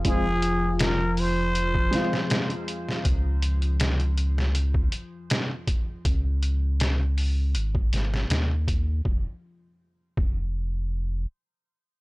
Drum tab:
HH |x-x-x-o-x-x-xxx-|x-xxxxx-x-x-x-x-|x-x-x-o-x-x-x-x-|----------------|
SD |----o-----ooo--o|----o--o----o---|----o-----ooo---|----------------|
BD |o--------o------|o--------o----o-|o--------o----o-|o-----o---------|